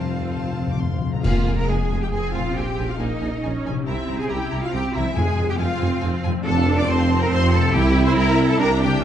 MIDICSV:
0, 0, Header, 1, 10, 480
1, 0, Start_track
1, 0, Key_signature, -4, "minor"
1, 0, Tempo, 454201
1, 1309, Time_signature, 3, 2, 24, 8
1, 1309, Tempo, 438276
1, 3709, Tempo, 430725
1, 9962, End_track
2, 0, Start_track
2, 0, Title_t, "Violin section"
2, 0, Program_c, 0, 48
2, 0, Note_on_c, 0, 81, 54
2, 296, Note_off_c, 0, 81, 0
2, 332, Note_on_c, 0, 81, 55
2, 676, Note_off_c, 0, 81, 0
2, 713, Note_on_c, 0, 86, 51
2, 831, Note_on_c, 0, 84, 46
2, 832, Note_off_c, 0, 86, 0
2, 1192, Note_off_c, 0, 84, 0
2, 1192, Note_on_c, 0, 82, 45
2, 1307, Note_off_c, 0, 82, 0
2, 1319, Note_on_c, 0, 80, 69
2, 1407, Note_off_c, 0, 80, 0
2, 1559, Note_on_c, 0, 80, 60
2, 1647, Note_off_c, 0, 80, 0
2, 1804, Note_on_c, 0, 80, 62
2, 1892, Note_off_c, 0, 80, 0
2, 2035, Note_on_c, 0, 80, 58
2, 2123, Note_off_c, 0, 80, 0
2, 2268, Note_on_c, 0, 80, 59
2, 2356, Note_off_c, 0, 80, 0
2, 2516, Note_on_c, 0, 80, 61
2, 2603, Note_off_c, 0, 80, 0
2, 2763, Note_on_c, 0, 80, 65
2, 2851, Note_off_c, 0, 80, 0
2, 2990, Note_on_c, 0, 80, 52
2, 3078, Note_off_c, 0, 80, 0
2, 3227, Note_on_c, 0, 80, 66
2, 3314, Note_off_c, 0, 80, 0
2, 3465, Note_on_c, 0, 80, 60
2, 3552, Note_off_c, 0, 80, 0
2, 3702, Note_on_c, 0, 80, 61
2, 3791, Note_off_c, 0, 80, 0
2, 3956, Note_on_c, 0, 80, 66
2, 4045, Note_off_c, 0, 80, 0
2, 4188, Note_on_c, 0, 82, 68
2, 4277, Note_off_c, 0, 82, 0
2, 4428, Note_on_c, 0, 82, 60
2, 4517, Note_off_c, 0, 82, 0
2, 4661, Note_on_c, 0, 82, 67
2, 4750, Note_off_c, 0, 82, 0
2, 4907, Note_on_c, 0, 82, 66
2, 4996, Note_off_c, 0, 82, 0
2, 5150, Note_on_c, 0, 82, 64
2, 5240, Note_off_c, 0, 82, 0
2, 5401, Note_on_c, 0, 82, 70
2, 5490, Note_off_c, 0, 82, 0
2, 5626, Note_on_c, 0, 80, 77
2, 5715, Note_off_c, 0, 80, 0
2, 5872, Note_on_c, 0, 80, 64
2, 5961, Note_off_c, 0, 80, 0
2, 6107, Note_on_c, 0, 80, 71
2, 6196, Note_off_c, 0, 80, 0
2, 6349, Note_on_c, 0, 80, 72
2, 6438, Note_off_c, 0, 80, 0
2, 6573, Note_on_c, 0, 80, 73
2, 6662, Note_off_c, 0, 80, 0
2, 6836, Note_on_c, 0, 80, 76
2, 6925, Note_off_c, 0, 80, 0
2, 7086, Note_on_c, 0, 81, 81
2, 7194, Note_off_c, 0, 81, 0
2, 7212, Note_on_c, 0, 77, 69
2, 7318, Note_on_c, 0, 81, 70
2, 7326, Note_off_c, 0, 77, 0
2, 7438, Note_off_c, 0, 81, 0
2, 7442, Note_on_c, 0, 77, 75
2, 7559, Note_off_c, 0, 77, 0
2, 7564, Note_on_c, 0, 81, 81
2, 7668, Note_on_c, 0, 77, 70
2, 7671, Note_off_c, 0, 81, 0
2, 7786, Note_on_c, 0, 81, 78
2, 7790, Note_off_c, 0, 77, 0
2, 7908, Note_off_c, 0, 81, 0
2, 7908, Note_on_c, 0, 77, 69
2, 8018, Note_on_c, 0, 81, 76
2, 8029, Note_off_c, 0, 77, 0
2, 8135, Note_off_c, 0, 81, 0
2, 8154, Note_on_c, 0, 77, 75
2, 8271, Note_off_c, 0, 77, 0
2, 8272, Note_on_c, 0, 81, 79
2, 8373, Note_on_c, 0, 77, 77
2, 8390, Note_off_c, 0, 81, 0
2, 8499, Note_off_c, 0, 77, 0
2, 8513, Note_on_c, 0, 79, 91
2, 8621, Note_off_c, 0, 79, 0
2, 8632, Note_on_c, 0, 76, 74
2, 8740, Note_on_c, 0, 79, 74
2, 8748, Note_off_c, 0, 76, 0
2, 8862, Note_off_c, 0, 79, 0
2, 8871, Note_on_c, 0, 76, 78
2, 8985, Note_on_c, 0, 79, 83
2, 8987, Note_off_c, 0, 76, 0
2, 9095, Note_off_c, 0, 79, 0
2, 9112, Note_on_c, 0, 76, 82
2, 9223, Note_on_c, 0, 79, 82
2, 9228, Note_off_c, 0, 76, 0
2, 9344, Note_off_c, 0, 79, 0
2, 9350, Note_on_c, 0, 76, 77
2, 9468, Note_off_c, 0, 76, 0
2, 9470, Note_on_c, 0, 79, 80
2, 9580, Note_off_c, 0, 79, 0
2, 9588, Note_on_c, 0, 76, 81
2, 9708, Note_off_c, 0, 76, 0
2, 9711, Note_on_c, 0, 79, 79
2, 9830, Note_off_c, 0, 79, 0
2, 9834, Note_on_c, 0, 76, 75
2, 9952, Note_off_c, 0, 76, 0
2, 9962, End_track
3, 0, Start_track
3, 0, Title_t, "Violin section"
3, 0, Program_c, 1, 48
3, 0, Note_on_c, 1, 72, 55
3, 0, Note_on_c, 1, 77, 54
3, 1097, Note_off_c, 1, 72, 0
3, 1097, Note_off_c, 1, 77, 0
3, 1307, Note_on_c, 1, 77, 79
3, 1644, Note_off_c, 1, 77, 0
3, 1673, Note_on_c, 1, 82, 72
3, 1790, Note_off_c, 1, 82, 0
3, 1807, Note_on_c, 1, 80, 75
3, 2159, Note_off_c, 1, 80, 0
3, 2169, Note_on_c, 1, 79, 74
3, 2214, Note_off_c, 1, 79, 0
3, 2291, Note_on_c, 1, 80, 79
3, 2517, Note_off_c, 1, 80, 0
3, 2517, Note_on_c, 1, 77, 81
3, 2755, Note_off_c, 1, 77, 0
3, 2761, Note_on_c, 1, 79, 75
3, 3109, Note_off_c, 1, 79, 0
3, 3116, Note_on_c, 1, 77, 69
3, 3233, Note_off_c, 1, 77, 0
3, 3233, Note_on_c, 1, 75, 72
3, 3954, Note_off_c, 1, 75, 0
3, 4207, Note_on_c, 1, 76, 79
3, 4538, Note_off_c, 1, 76, 0
3, 4563, Note_on_c, 1, 80, 77
3, 4610, Note_off_c, 1, 80, 0
3, 4703, Note_on_c, 1, 79, 72
3, 5039, Note_on_c, 1, 77, 78
3, 5046, Note_off_c, 1, 79, 0
3, 5157, Note_off_c, 1, 77, 0
3, 5174, Note_on_c, 1, 79, 89
3, 5263, Note_off_c, 1, 79, 0
3, 5416, Note_on_c, 1, 76, 90
3, 5644, Note_off_c, 1, 76, 0
3, 5644, Note_on_c, 1, 80, 93
3, 6003, Note_off_c, 1, 80, 0
3, 6014, Note_on_c, 1, 79, 85
3, 6060, Note_off_c, 1, 79, 0
3, 6106, Note_on_c, 1, 77, 92
3, 6818, Note_off_c, 1, 77, 0
3, 7088, Note_on_c, 1, 81, 98
3, 7418, Note_off_c, 1, 81, 0
3, 7441, Note_on_c, 1, 86, 89
3, 7556, Note_off_c, 1, 86, 0
3, 7561, Note_on_c, 1, 84, 91
3, 7907, Note_off_c, 1, 84, 0
3, 7911, Note_on_c, 1, 82, 106
3, 8020, Note_on_c, 1, 84, 113
3, 8031, Note_off_c, 1, 82, 0
3, 8259, Note_off_c, 1, 84, 0
3, 8275, Note_on_c, 1, 81, 110
3, 8510, Note_off_c, 1, 81, 0
3, 8510, Note_on_c, 1, 79, 96
3, 8859, Note_off_c, 1, 79, 0
3, 8871, Note_on_c, 1, 84, 103
3, 8987, Note_off_c, 1, 84, 0
3, 8990, Note_on_c, 1, 82, 108
3, 9340, Note_off_c, 1, 82, 0
3, 9356, Note_on_c, 1, 81, 110
3, 9470, Note_on_c, 1, 82, 106
3, 9471, Note_off_c, 1, 81, 0
3, 9699, Note_on_c, 1, 79, 109
3, 9705, Note_off_c, 1, 82, 0
3, 9940, Note_off_c, 1, 79, 0
3, 9962, End_track
4, 0, Start_track
4, 0, Title_t, "Cello section"
4, 0, Program_c, 2, 48
4, 0, Note_on_c, 2, 65, 69
4, 835, Note_off_c, 2, 65, 0
4, 1320, Note_on_c, 2, 65, 85
4, 1651, Note_off_c, 2, 65, 0
4, 1689, Note_on_c, 2, 70, 92
4, 1800, Note_off_c, 2, 70, 0
4, 1800, Note_on_c, 2, 68, 80
4, 2156, Note_off_c, 2, 68, 0
4, 2163, Note_on_c, 2, 67, 86
4, 2268, Note_on_c, 2, 68, 97
4, 2277, Note_off_c, 2, 67, 0
4, 2505, Note_off_c, 2, 68, 0
4, 2520, Note_on_c, 2, 65, 90
4, 2752, Note_off_c, 2, 65, 0
4, 2763, Note_on_c, 2, 67, 84
4, 3117, Note_off_c, 2, 67, 0
4, 3135, Note_on_c, 2, 65, 79
4, 3241, Note_on_c, 2, 63, 83
4, 3243, Note_off_c, 2, 65, 0
4, 3943, Note_off_c, 2, 63, 0
4, 4201, Note_on_c, 2, 64, 86
4, 4534, Note_off_c, 2, 64, 0
4, 4567, Note_on_c, 2, 68, 93
4, 4673, Note_on_c, 2, 67, 87
4, 4682, Note_off_c, 2, 68, 0
4, 5037, Note_off_c, 2, 67, 0
4, 5048, Note_on_c, 2, 65, 89
4, 5155, Note_on_c, 2, 67, 102
4, 5165, Note_off_c, 2, 65, 0
4, 5398, Note_off_c, 2, 67, 0
4, 5400, Note_on_c, 2, 64, 94
4, 5638, Note_on_c, 2, 68, 101
4, 5641, Note_off_c, 2, 64, 0
4, 6000, Note_off_c, 2, 68, 0
4, 6010, Note_on_c, 2, 67, 100
4, 6056, Note_off_c, 2, 67, 0
4, 6120, Note_on_c, 2, 65, 95
4, 6825, Note_off_c, 2, 65, 0
4, 7069, Note_on_c, 2, 69, 116
4, 7409, Note_off_c, 2, 69, 0
4, 7434, Note_on_c, 2, 74, 122
4, 7553, Note_on_c, 2, 72, 107
4, 7555, Note_off_c, 2, 74, 0
4, 7910, Note_off_c, 2, 72, 0
4, 7913, Note_on_c, 2, 70, 108
4, 8021, Note_on_c, 2, 72, 121
4, 8029, Note_off_c, 2, 70, 0
4, 8259, Note_on_c, 2, 69, 126
4, 8264, Note_off_c, 2, 72, 0
4, 8497, Note_off_c, 2, 69, 0
4, 8504, Note_on_c, 2, 67, 127
4, 8863, Note_off_c, 2, 67, 0
4, 8869, Note_on_c, 2, 72, 121
4, 8976, Note_on_c, 2, 70, 125
4, 8984, Note_off_c, 2, 72, 0
4, 9333, Note_off_c, 2, 70, 0
4, 9347, Note_on_c, 2, 69, 110
4, 9463, Note_on_c, 2, 70, 127
4, 9464, Note_off_c, 2, 69, 0
4, 9552, Note_off_c, 2, 70, 0
4, 9705, Note_on_c, 2, 67, 109
4, 9943, Note_off_c, 2, 67, 0
4, 9962, End_track
5, 0, Start_track
5, 0, Title_t, "Harp"
5, 0, Program_c, 3, 46
5, 0, Note_on_c, 3, 53, 51
5, 0, Note_on_c, 3, 60, 37
5, 104, Note_on_c, 3, 65, 41
5, 228, Note_on_c, 3, 69, 42
5, 351, Note_on_c, 3, 72, 39
5, 472, Note_on_c, 3, 77, 41
5, 597, Note_on_c, 3, 81, 43
5, 714, Note_on_c, 3, 84, 39
5, 818, Note_off_c, 3, 81, 0
5, 831, Note_on_c, 3, 81, 42
5, 946, Note_off_c, 3, 77, 0
5, 959, Note_on_c, 3, 77, 43
5, 1064, Note_off_c, 3, 72, 0
5, 1077, Note_on_c, 3, 72, 36
5, 1115, Note_off_c, 3, 53, 0
5, 1127, Note_on_c, 3, 53, 62
5, 1165, Note_off_c, 3, 60, 0
5, 1178, Note_on_c, 3, 60, 52
5, 1185, Note_off_c, 3, 69, 0
5, 1198, Note_on_c, 3, 69, 38
5, 1211, Note_off_c, 3, 65, 0
5, 1224, Note_on_c, 3, 65, 50
5, 1271, Note_on_c, 3, 68, 56
5, 1329, Note_off_c, 3, 81, 0
5, 1332, Note_off_c, 3, 69, 0
5, 2565, Note_on_c, 3, 46, 61
5, 2615, Note_on_c, 3, 61, 53
5, 2650, Note_off_c, 3, 65, 0
5, 2663, Note_on_c, 3, 65, 54
5, 2698, Note_off_c, 3, 68, 0
5, 2703, Note_off_c, 3, 60, 0
5, 2711, Note_on_c, 3, 68, 53
5, 2773, Note_off_c, 3, 72, 0
5, 2773, Note_off_c, 3, 84, 0
5, 3996, Note_on_c, 3, 48, 64
5, 4047, Note_on_c, 3, 58, 54
5, 4085, Note_off_c, 3, 61, 0
5, 4099, Note_on_c, 3, 61, 55
5, 4118, Note_off_c, 3, 53, 0
5, 4119, Note_off_c, 3, 46, 0
5, 4149, Note_on_c, 3, 67, 51
5, 4169, Note_off_c, 3, 65, 0
5, 4193, Note_off_c, 3, 68, 0
5, 4218, Note_off_c, 3, 77, 0
5, 5442, Note_on_c, 3, 53, 73
5, 5491, Note_on_c, 3, 56, 59
5, 5541, Note_on_c, 3, 60, 57
5, 5562, Note_off_c, 3, 48, 0
5, 5587, Note_off_c, 3, 58, 0
5, 5592, Note_on_c, 3, 65, 58
5, 5613, Note_off_c, 3, 61, 0
5, 5638, Note_off_c, 3, 67, 0
5, 6866, Note_off_c, 3, 53, 0
5, 6879, Note_on_c, 3, 53, 82
5, 6931, Note_on_c, 3, 57, 68
5, 6969, Note_off_c, 3, 60, 0
5, 6983, Note_on_c, 3, 60, 64
5, 7019, Note_off_c, 3, 65, 0
5, 7023, Note_off_c, 3, 56, 0
5, 7032, Note_on_c, 3, 65, 66
5, 8311, Note_on_c, 3, 48, 86
5, 8360, Note_on_c, 3, 58, 71
5, 8398, Note_off_c, 3, 60, 0
5, 8412, Note_on_c, 3, 60, 71
5, 8427, Note_off_c, 3, 53, 0
5, 8453, Note_off_c, 3, 57, 0
5, 8462, Note_on_c, 3, 64, 79
5, 8503, Note_off_c, 3, 65, 0
5, 9745, Note_on_c, 3, 49, 87
5, 9795, Note_on_c, 3, 61, 71
5, 9845, Note_on_c, 3, 65, 73
5, 9870, Note_off_c, 3, 48, 0
5, 9895, Note_off_c, 3, 58, 0
5, 9921, Note_off_c, 3, 60, 0
5, 9946, Note_off_c, 3, 64, 0
5, 9962, Note_off_c, 3, 49, 0
5, 9962, Note_off_c, 3, 61, 0
5, 9962, Note_off_c, 3, 65, 0
5, 9962, End_track
6, 0, Start_track
6, 0, Title_t, "Viola section"
6, 0, Program_c, 4, 48
6, 0, Note_on_c, 4, 60, 61
6, 809, Note_off_c, 4, 60, 0
6, 1315, Note_on_c, 4, 58, 77
6, 1760, Note_off_c, 4, 58, 0
6, 1794, Note_on_c, 4, 56, 65
6, 2273, Note_off_c, 4, 56, 0
6, 2277, Note_on_c, 4, 60, 72
6, 3214, Note_off_c, 4, 60, 0
6, 3230, Note_on_c, 4, 58, 68
6, 3700, Note_off_c, 4, 58, 0
6, 3717, Note_on_c, 4, 61, 75
6, 4188, Note_off_c, 4, 61, 0
6, 4191, Note_on_c, 4, 60, 78
6, 4666, Note_off_c, 4, 60, 0
6, 4673, Note_on_c, 4, 64, 81
6, 5158, Note_off_c, 4, 64, 0
6, 5160, Note_on_c, 4, 60, 76
6, 5632, Note_off_c, 4, 60, 0
6, 5637, Note_on_c, 4, 56, 80
6, 6109, Note_off_c, 4, 56, 0
6, 6121, Note_on_c, 4, 60, 88
6, 7077, Note_on_c, 4, 62, 94
6, 7078, Note_off_c, 4, 60, 0
6, 7547, Note_off_c, 4, 62, 0
6, 7550, Note_on_c, 4, 60, 107
6, 8503, Note_on_c, 4, 64, 125
6, 8504, Note_off_c, 4, 60, 0
6, 9444, Note_off_c, 4, 64, 0
6, 9467, Note_on_c, 4, 62, 106
6, 9950, Note_off_c, 4, 62, 0
6, 9962, End_track
7, 0, Start_track
7, 0, Title_t, "Timpani"
7, 0, Program_c, 5, 47
7, 44, Note_on_c, 5, 41, 38
7, 117, Note_off_c, 5, 41, 0
7, 133, Note_on_c, 5, 41, 39
7, 200, Note_off_c, 5, 41, 0
7, 212, Note_on_c, 5, 41, 42
7, 280, Note_off_c, 5, 41, 0
7, 293, Note_on_c, 5, 41, 39
7, 361, Note_off_c, 5, 41, 0
7, 373, Note_on_c, 5, 41, 47
7, 443, Note_off_c, 5, 41, 0
7, 456, Note_on_c, 5, 41, 53
7, 530, Note_off_c, 5, 41, 0
7, 544, Note_on_c, 5, 41, 53
7, 612, Note_off_c, 5, 41, 0
7, 624, Note_on_c, 5, 41, 60
7, 695, Note_off_c, 5, 41, 0
7, 707, Note_on_c, 5, 41, 65
7, 774, Note_off_c, 5, 41, 0
7, 786, Note_on_c, 5, 41, 64
7, 862, Note_off_c, 5, 41, 0
7, 874, Note_on_c, 5, 41, 57
7, 942, Note_off_c, 5, 41, 0
7, 954, Note_on_c, 5, 41, 63
7, 1023, Note_off_c, 5, 41, 0
7, 1036, Note_on_c, 5, 41, 80
7, 1105, Note_off_c, 5, 41, 0
7, 1118, Note_on_c, 5, 41, 76
7, 1184, Note_off_c, 5, 41, 0
7, 1197, Note_on_c, 5, 41, 93
7, 1272, Note_off_c, 5, 41, 0
7, 1309, Note_on_c, 5, 41, 88
7, 1987, Note_off_c, 5, 41, 0
7, 5646, Note_on_c, 5, 41, 89
7, 6318, Note_off_c, 5, 41, 0
7, 8510, Note_on_c, 5, 48, 88
7, 9180, Note_off_c, 5, 48, 0
7, 9962, End_track
8, 0, Start_track
8, 0, Title_t, "Double bass section"
8, 0, Program_c, 6, 48
8, 0, Note_on_c, 6, 41, 56
8, 1063, Note_off_c, 6, 41, 0
8, 1318, Note_on_c, 6, 29, 75
8, 1406, Note_off_c, 6, 29, 0
8, 1556, Note_on_c, 6, 29, 65
8, 1644, Note_off_c, 6, 29, 0
8, 1796, Note_on_c, 6, 29, 68
8, 1884, Note_off_c, 6, 29, 0
8, 2037, Note_on_c, 6, 29, 67
8, 2124, Note_off_c, 6, 29, 0
8, 2272, Note_on_c, 6, 29, 73
8, 2360, Note_off_c, 6, 29, 0
8, 2525, Note_on_c, 6, 29, 73
8, 2612, Note_off_c, 6, 29, 0
8, 2768, Note_on_c, 6, 34, 76
8, 2855, Note_off_c, 6, 34, 0
8, 3002, Note_on_c, 6, 34, 69
8, 3090, Note_off_c, 6, 34, 0
8, 3246, Note_on_c, 6, 34, 70
8, 3334, Note_off_c, 6, 34, 0
8, 3485, Note_on_c, 6, 34, 68
8, 3573, Note_off_c, 6, 34, 0
8, 3728, Note_on_c, 6, 34, 75
8, 3818, Note_off_c, 6, 34, 0
8, 3967, Note_on_c, 6, 34, 74
8, 4057, Note_off_c, 6, 34, 0
8, 4211, Note_on_c, 6, 36, 77
8, 4300, Note_off_c, 6, 36, 0
8, 4442, Note_on_c, 6, 36, 67
8, 4531, Note_off_c, 6, 36, 0
8, 4681, Note_on_c, 6, 36, 69
8, 4771, Note_off_c, 6, 36, 0
8, 4921, Note_on_c, 6, 36, 72
8, 5010, Note_off_c, 6, 36, 0
8, 5161, Note_on_c, 6, 36, 83
8, 5251, Note_off_c, 6, 36, 0
8, 5407, Note_on_c, 6, 36, 81
8, 5496, Note_off_c, 6, 36, 0
8, 5643, Note_on_c, 6, 41, 85
8, 5733, Note_off_c, 6, 41, 0
8, 5881, Note_on_c, 6, 41, 79
8, 5970, Note_off_c, 6, 41, 0
8, 6123, Note_on_c, 6, 41, 77
8, 6212, Note_off_c, 6, 41, 0
8, 6355, Note_on_c, 6, 41, 82
8, 6444, Note_off_c, 6, 41, 0
8, 6593, Note_on_c, 6, 41, 91
8, 6683, Note_off_c, 6, 41, 0
8, 6838, Note_on_c, 6, 41, 83
8, 6927, Note_off_c, 6, 41, 0
8, 7076, Note_on_c, 6, 41, 99
8, 7500, Note_off_c, 6, 41, 0
8, 7548, Note_on_c, 6, 41, 92
8, 7970, Note_off_c, 6, 41, 0
8, 8028, Note_on_c, 6, 41, 110
8, 8450, Note_off_c, 6, 41, 0
8, 8499, Note_on_c, 6, 36, 110
8, 8923, Note_off_c, 6, 36, 0
8, 8980, Note_on_c, 6, 36, 97
8, 9406, Note_off_c, 6, 36, 0
8, 9458, Note_on_c, 6, 36, 111
8, 9889, Note_off_c, 6, 36, 0
8, 9962, End_track
9, 0, Start_track
9, 0, Title_t, "Tuba"
9, 0, Program_c, 7, 58
9, 0, Note_on_c, 7, 29, 64
9, 1069, Note_off_c, 7, 29, 0
9, 1311, Note_on_c, 7, 29, 76
9, 1407, Note_off_c, 7, 29, 0
9, 1560, Note_on_c, 7, 29, 64
9, 1654, Note_off_c, 7, 29, 0
9, 1795, Note_on_c, 7, 29, 68
9, 1890, Note_off_c, 7, 29, 0
9, 2042, Note_on_c, 7, 29, 65
9, 2136, Note_off_c, 7, 29, 0
9, 2280, Note_on_c, 7, 29, 69
9, 2374, Note_off_c, 7, 29, 0
9, 2510, Note_on_c, 7, 29, 70
9, 2606, Note_off_c, 7, 29, 0
9, 2753, Note_on_c, 7, 34, 79
9, 2849, Note_off_c, 7, 34, 0
9, 2998, Note_on_c, 7, 34, 69
9, 3092, Note_off_c, 7, 34, 0
9, 3227, Note_on_c, 7, 34, 74
9, 3324, Note_off_c, 7, 34, 0
9, 3460, Note_on_c, 7, 34, 73
9, 3558, Note_off_c, 7, 34, 0
9, 3707, Note_on_c, 7, 34, 66
9, 3804, Note_off_c, 7, 34, 0
9, 3941, Note_on_c, 7, 34, 63
9, 4040, Note_off_c, 7, 34, 0
9, 4186, Note_on_c, 7, 36, 86
9, 4284, Note_off_c, 7, 36, 0
9, 4432, Note_on_c, 7, 36, 73
9, 4530, Note_off_c, 7, 36, 0
9, 4672, Note_on_c, 7, 36, 79
9, 4770, Note_off_c, 7, 36, 0
9, 4919, Note_on_c, 7, 36, 71
9, 5016, Note_off_c, 7, 36, 0
9, 5158, Note_on_c, 7, 36, 70
9, 5255, Note_off_c, 7, 36, 0
9, 5406, Note_on_c, 7, 36, 74
9, 5501, Note_off_c, 7, 36, 0
9, 5647, Note_on_c, 7, 29, 85
9, 5742, Note_off_c, 7, 29, 0
9, 5884, Note_on_c, 7, 29, 78
9, 5979, Note_off_c, 7, 29, 0
9, 6127, Note_on_c, 7, 29, 83
9, 6222, Note_off_c, 7, 29, 0
9, 6362, Note_on_c, 7, 29, 79
9, 6458, Note_off_c, 7, 29, 0
9, 6602, Note_on_c, 7, 29, 82
9, 6697, Note_off_c, 7, 29, 0
9, 6844, Note_on_c, 7, 29, 77
9, 6939, Note_off_c, 7, 29, 0
9, 7081, Note_on_c, 7, 29, 112
9, 7503, Note_off_c, 7, 29, 0
9, 7555, Note_on_c, 7, 29, 103
9, 7974, Note_off_c, 7, 29, 0
9, 8030, Note_on_c, 7, 29, 98
9, 8450, Note_off_c, 7, 29, 0
9, 8500, Note_on_c, 7, 36, 110
9, 8924, Note_off_c, 7, 36, 0
9, 8976, Note_on_c, 7, 36, 111
9, 9404, Note_off_c, 7, 36, 0
9, 9459, Note_on_c, 7, 36, 98
9, 9889, Note_off_c, 7, 36, 0
9, 9962, End_track
10, 0, Start_track
10, 0, Title_t, "Drums"
10, 1315, Note_on_c, 9, 35, 75
10, 1315, Note_on_c, 9, 49, 66
10, 1425, Note_off_c, 9, 35, 0
10, 1425, Note_off_c, 9, 49, 0
10, 9962, End_track
0, 0, End_of_file